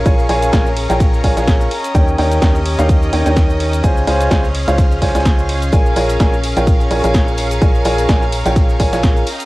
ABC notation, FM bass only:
X:1
M:4/4
L:1/16
Q:"Swing 16ths" 1/4=127
K:Bbdor
V:1 name="FM bass" clef=bass
B,,,2 B,,,2 B,,,3 B,,,3 B,,, B,,,3 z2 | E,,2 E,,2 E,,3 E,,3 E,, E,,4- E,, | D,,2 D,,2 D,,3 D,,3 D,, D,,4- D,, | B,,,2 B,,,2 B,,,3 B,,,3 B,,, B,,,4- B,,, |
B,,,2 B,,,2 B,,,3 B,,,3 B,,, B,,,3 z2 |]